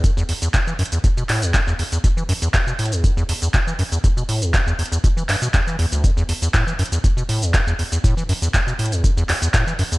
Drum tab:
HH |x---o-x-x---oxx-x---o-x-x---o-x-|x---o-x-x---oxx-x---o-x-x---o-x-|x---o-x-x---oxx-x---o-x-x---o-x-|x---o-x-x---oxx-x---o-x-x---o-x-|
SH |x-x---x-x-x---x-x-x---x-x-x---x-|x-x---x-x-x---x-x-x---x-x-x---x-|x-x---x-x-x---x-x-x---x-x-x---x-|x-x---x-x-x---x-x-x---x-x-x---x-|
CP |--------x-----------x---x-------|--------x---------------x-------|--------x-----------x---x-------|--------x---------------x-------|
BD |o-------o-------o-------o-------|o-------o-------o-------o-------|o-------o-------o-------o-------|o-------o-------o-------o-------|

HH |x---o-x-x---oxx-x---o-x-x---o-x-|
SH |x-x---x-x-x---x-x-x---x-x-x---x-|
CP |--------x-----------x---x-------|
BD |o-------o-------o-------o-------|